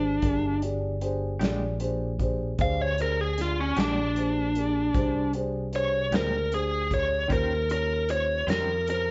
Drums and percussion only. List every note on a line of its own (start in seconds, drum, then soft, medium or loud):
0.22 kick medium
0.22 closed hi-hat medium
0.62 closed hi-hat medium
1.01 closed hi-hat medium
1.41 snare medium
1.41 closed hi-hat medium
1.80 closed hi-hat medium
2.20 kick medium
2.20 closed hi-hat medium
2.59 kick medium
2.59 closed hi-hat medium
2.98 closed hi-hat medium
3.38 snare soft
3.38 closed hi-hat medium
3.77 snare medium
3.77 closed hi-hat medium
4.16 closed hi-hat soft
4.55 closed hi-hat medium
4.94 kick medium
4.94 closed hi-hat medium
5.33 closed hi-hat soft
5.73 closed hi-hat medium
6.12 snare loud
6.12 closed hi-hat medium
6.52 closed hi-hat medium
6.91 kick medium
6.91 closed hi-hat medium
7.30 kick medium
7.30 closed hi-hat medium
7.70 closed hi-hat medium
8.09 closed hi-hat medium
8.48 snare medium
8.48 closed hi-hat medium
8.87 closed hi-hat medium